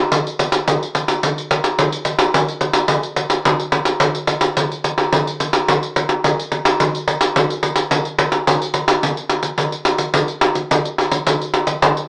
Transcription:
0.11 pandeiro medium
0.26 pandeiro soft
0.39 pandeiro medium
0.52 pandeiro medium
0.67 pandeiro medium
0.83 pandeiro soft
0.95 pandeiro medium
1.08 pandeiro medium
1.23 pandeiro medium
1.38 pandeiro soft
1.51 pandeiro medium
1.64 pandeiro medium
1.79 pandeiro medium
1.92 pandeiro soft
2.05 pandeiro medium
2.19 pandeiro medium
2.34 pandeiro medium
2.49 pandeiro soft
2.61 pandeiro medium
2.74 pandeiro medium
2.88 pandeiro medium
3.03 pandeiro soft
3.16 pandeiro medium
3.30 pandeiro medium
3.45 pandeiro medium
3.60 pandeiro soft
3.72 pandeiro medium
3.85 pandeiro medium
4.00 pandeiro medium
4.15 pandeiro soft
4.27 pandeiro medium
4.41 pandeiro medium
4.57 pandeiro medium
4.72 pandeiro soft
4.84 pandeiro medium
4.98 pandeiro medium
5.12 pandeiro medium
5.27 pandeiro soft
5.40 pandeiro medium
5.53 pandeiro medium
5.68 pandeiro medium
5.83 pandeiro soft
5.96 pandeiro medium
6.09 pandeiro medium
6.24 pandeiro medium
6.39 pandeiro soft
6.52 pandeiro medium
6.65 pandeiro medium
6.80 pandeiro medium
6.95 pandeiro soft
7.08 pandeiro medium
7.21 pandeiro medium
7.36 pandeiro medium
7.50 pandeiro soft
7.63 pandeiro medium
7.76 pandeiro medium
7.91 pandeiro medium
8.05 pandeiro soft
8.19 pandeiro medium
8.32 pandeiro medium
8.48 pandeiro medium
8.62 pandeiro soft
8.74 pandeiro medium
8.88 pandeiro medium
9.03 pandeiro medium
9.17 pandeiro soft
9.30 pandeiro medium
9.43 pandeiro medium
9.58 pandeiro medium
9.72 pandeiro soft
9.85 pandeiro medium
9.99 pandeiro medium
10.14 pandeiro medium
10.28 pandeiro soft
10.41 pandeiro medium
10.55 pandeiro soft
10.71 pandeiro medium
10.85 pandeiro soft
10.98 pandeiro medium
11.11 pandeiro medium
11.27 pandeiro medium
11.41 pandeiro soft
11.54 pandeiro medium
11.67 pandeiro medium
11.82 pandeiro medium
11.97 pandeiro soft

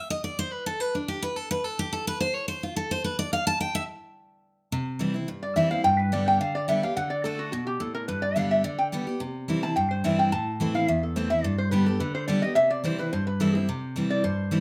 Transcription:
0.10 0.23 D#5 loud
0.24 0.38 D5 medium
0.39 0.52 C5 loud
0.52 0.66 B4 medium
0.66 0.80 A4 loud
0.80 0.94 B4 medium
0.95 1.08 D4 medium
1.08 1.22 G4 medium
1.22 1.36 B4 loud
1.36 1.50 A4 medium
1.51 1.64 B4 loud
1.64 1.78 A4 medium
1.79 1.92 G4 loud
1.93 2.06 A4 medium
2.07 2.20 B4 loud
2.20 2.35 C5 loud
2.35 2.48 C#5 loud
2.48 2.62 C5 medium
2.63 2.76 F4 medium
2.76 2.90 A4 medium
2.91 3.04 C5 loud
3.04 3.18 B4 medium
3.19 3.32 D5 loud
3.33 3.46 F5 loud
3.47 3.60 A5 loud
3.61 3.74 G5 loud
3.75 3.83 E5 loud
4.72 5.25 C3 medium
4.99 5.14 E3 medium
4.99 5.14 G3 medium
4.99 5.14 C4 medium
4.99 5.13 E4 loud
5.14 5.28 C4 medium
5.14 5.27 E4 medium
5.28 5.81 G2 medium
5.43 5.56 D5 medium
5.56 5.70 E3 medium
5.56 5.70 G3 medium
5.56 5.71 C4 medium
5.56 5.70 E4 medium
5.56 5.70 E5 medium
5.71 5.84 C4 medium
5.71 5.84 E4 medium
5.71 5.84 F5 loud
5.84 6.38 G2 loud
5.84 5.98 G5 loud
5.99 6.12 B4 medium
6.12 6.39 D3 medium
6.12 6.39 G3 medium
6.12 6.39 B3 medium
6.12 6.40 G4 medium
6.12 6.27 D5 medium
6.28 6.40 G5 loud
6.40 6.67 D3 medium
6.40 6.54 F5 medium
6.55 6.68 D5 loud
6.68 6.82 D3 medium
6.68 6.82 G3 loud
6.68 6.83 B3 medium
6.68 6.82 G4 loud
6.68 6.82 E5 medium
6.83 6.97 B3 soft
6.83 6.96 G4 medium
6.83 6.96 F5 loud
6.96 7.23 D3 medium
6.96 7.11 F#5 loud
7.10 7.23 D5 medium
7.24 7.51 D3 medium
7.24 7.51 A3 medium
7.24 7.52 D4 loud
7.24 7.52 F#4 loud
7.24 7.38 A4 medium
7.39 7.51 F#4 medium
7.52 7.79 B2 medium
7.52 7.66 F#4 medium
7.67 7.80 G4 loud
7.80 8.07 A2 medium
7.80 7.94 A4 medium
7.95 8.08 A#4 loud
8.08 8.62 G2 medium
8.08 8.22 B4 medium
8.22 8.36 D5 loud
8.36 8.63 D3 medium
8.36 8.63 G3 medium
8.36 8.63 B3 loud
8.36 8.63 G4 loud
8.36 8.50 F5 loud
8.51 8.64 E5 medium
8.64 8.91 D3 medium
8.64 8.79 D5 medium
8.79 8.87 G5 loud
8.92 9.06 D3 medium
8.92 9.07 G3 medium
8.92 9.07 B3 loud
8.92 9.06 G4 loud
9.07 9.21 B3 soft
9.07 9.20 G4 medium
9.20 9.74 C3 medium
9.48 9.62 E3 medium
9.48 9.62 G3 medium
9.48 9.63 C4 medium
9.48 9.61 E4 loud
9.63 9.76 C4 soft
9.63 9.76 E4 medium
9.63 9.75 A5 loud
9.76 10.30 G2 medium
9.76 9.90 G5 medium
9.91 10.04 C5 medium
10.04 10.31 E3 medium
10.04 10.31 G3 loud
10.04 10.31 C4 loud
10.04 10.32 E4 loud
10.04 10.19 E5 medium
10.19 10.32 G5 loud
10.32 10.86 A2 medium
10.32 10.72 A5 loud
10.60 10.74 E3 medium
10.60 10.74 A3 medium
10.60 10.75 C4 loud
10.60 10.73 E4 medium
10.74 10.88 C4 soft
10.74 10.88 E4 medium
10.74 10.89 F5 loud
10.88 11.42 E2 medium
10.88 11.03 E5 loud
11.03 11.16 A4 medium
11.16 11.30 E3 medium
11.16 11.30 A3 loud
11.16 11.31 C4 medium
11.16 11.29 E4 medium
11.16 11.30 C5 medium
11.30 11.44 C4 medium
11.30 11.43 E4 medium
11.30 11.44 E5 loud
11.44 11.98 G2 loud
11.44 11.58 D5 medium
11.58 11.71 C5 loud
11.71 11.86 D3 medium
11.71 11.86 G3 medium
11.71 11.86 B3 medium
11.71 11.85 G4 loud
11.71 11.86 B4 medium
11.86 12.00 B3 medium
11.86 11.99 G4 medium
11.86 11.99 A4 loud
12.00 12.27 D3 loud
12.00 12.14 B4 medium
12.15 12.27 C5 loud
12.28 12.42 D3 loud
12.28 12.42 G3 loud
12.28 12.42 B3 loud
12.28 12.41 G4 loud
12.28 12.42 D5 medium
12.42 12.56 B3 medium
12.42 12.55 G4 medium
12.42 12.55 D#5 loud
12.55 13.09 C3 medium
12.55 12.70 E5 loud
12.70 12.84 D5 loud
12.84 12.98 E3 medium
12.84 12.98 G3 medium
12.84 12.98 C4 medium
12.84 12.97 E4 loud
12.84 12.99 C5 medium
12.99 13.12 C4 medium
12.99 13.11 E4 medium
12.99 13.12 B4 loud
13.13 13.66 G2 medium
13.13 13.26 C5 loud
13.27 13.40 B4 medium
13.40 13.54 E3 medium
13.40 13.54 G3 loud
13.40 13.55 C4 loud
13.40 13.54 E4 loud
13.40 13.55 A4 medium
13.55 13.69 C4 soft
13.55 13.68 E4 medium
13.55 13.96 G4 loud
13.69 14.22 C3 medium
13.96 14.22 E3 medium
13.96 14.23 G3 medium
13.96 14.23 C4 medium
13.96 14.23 E4 medium
14.10 14.23 D5 loud
14.24 14.60 G2 medium
14.24 14.60 C5 medium
14.51 14.60 E3 medium
14.51 14.60 G3 loud
14.51 14.60 C4 medium
14.51 14.60 E4 medium

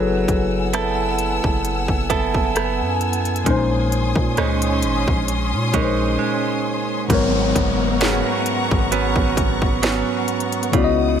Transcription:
0.00 0.26 F#1 loud
0.00 3.41 F#3 medium
0.00 3.46 F#3 medium
0.00 0.73 B3 medium
0.00 3.42 B3 medium
0.00 0.74 E4 medium
0.00 3.42 E4 medium
0.00 3.43 G#4 medium
0.00 3.43 A4 medium
0.00 3.44 B4 medium
0.00 3.48 C#5 medium
0.00 3.42 F#5 medium
0.00 3.48 F#5 medium
0.00 7.06 G#5 medium
0.00 3.42 E6 medium
0.28 1.40 F#1 loud
0.28 kick medium
0.28 closed hi-hat medium
0.73 2.09 B3 medium
0.73 2.09 E4 medium
0.73 2.10 A4 medium
0.73 cross-stick loud
0.73 closed hi-hat medium
1.19 closed hi-hat medium
1.44 1.87 F#1 loud
1.44 kick loud
1.65 closed hi-hat medium
1.88 2.82 F#1 loud
1.88 kick medium
2.10 2.54 B3 medium
2.10 3.56 E4 medium
2.10 3.57 A4 medium
2.10 kick medium
2.10 closed hi-hat medium
2.34 kick medium
2.55 3.56 B3 medium
2.55 cross-stick loud
2.55 closed hi-hat medium
2.81 3.43 F#2 loud
3.01 closed hi-hat soft
3.13 closed hi-hat medium
3.25 closed hi-hat soft
3.36 closed hi-hat soft
3.44 4.14 A#1 loud
3.44 5.69 A#2 medium
3.44 7.09 A#2 medium
3.44 5.69 G#3 medium
3.44 7.07 C#4 medium
3.44 5.70 C#4 medium
3.44 7.07 C6 medium
3.44 7.07 D#6 medium
3.44 kick loud
3.44 closed hi-hat medium
3.49 5.71 D#4 medium
3.49 5.72 C5 medium
3.92 closed hi-hat medium
4.16 4.36 A#2 loud
4.16 kick medium
4.37 4.85 C#2 loud
4.37 5.73 G#3 medium
4.37 5.74 C#4 medium
4.37 5.74 D#4 medium
4.37 cross-stick loud
4.37 closed hi-hat soft
4.62 closed hi-hat medium
4.82 5.06 G#1 medium
4.82 closed hi-hat medium
5.08 5.54 A#1 loud
5.08 kick loud
5.28 closed hi-hat medium
5.53 5.73 A#2 medium
5.73 6.17 A#1 loud
5.73 7.10 A#2 medium
5.73 6.18 G#3 medium
5.73 7.10 G#3 soft
5.73 8.01 C#4 medium
5.73 7.11 C#4 medium
5.73 8.01 D#4 medium
5.73 7.11 D#4 soft
5.73 5.82 A#4 soft
5.73 kick medium
5.73 closed hi-hat medium
5.83 7.15 C5 medium
6.19 8.00 G#3 medium
7.08 7.54 G#1 loud
7.08 10.69 G#2 medium
7.08 10.74 G#2 medium
7.08 10.69 F#3 medium
7.08 11.20 B3 medium
7.08 10.70 B3 medium
7.08 10.70 F#5 medium
7.08 10.70 A#5 medium
7.08 10.70 C#6 medium
7.08 kick loud
7.08 closed hi-hat medium
7.08 downlifter medium
7.13 10.71 A#4 medium
7.13 10.72 C#5 medium
7.56 8.23 F#1 loud
7.56 kick medium
7.56 closed hi-hat medium
8.01 8.91 F#3 medium
8.01 8.92 B3 medium
8.01 8.92 C#4 medium
8.01 11.06 G#4 medium
8.01 snare loud
8.01 closed hi-hat medium
8.29 11.20 C#5 medium
8.46 closed hi-hat medium
8.71 9.15 G#1 loud
8.71 kick loud
8.92 9.82 F#3 medium
8.92 9.83 B3 medium
8.92 9.83 C#4 medium
8.92 closed hi-hat medium
9.16 10.03 G#1 loud
9.16 kick medium
9.37 kick loud
9.37 closed hi-hat medium
9.62 kick loud
9.82 11.20 F#3 medium
9.82 11.20 B3 medium
9.82 11.20 C#4 medium
9.82 snare loud
9.82 closed hi-hat medium
10.28 closed hi-hat medium
10.40 closed hi-hat medium
10.52 closed hi-hat medium
10.63 closed hi-hat medium
10.71 11.20 C#2 loud
10.71 11.20 C#3 medium
10.71 11.20 B3 medium
10.71 11.20 E4 medium
10.71 11.20 F#5 medium
10.71 11.20 D#6 medium
10.71 kick loud
10.71 closed hi-hat medium
10.76 11.20 F#4 medium
10.76 10.83 D5 medium
10.84 11.20 D#5 medium

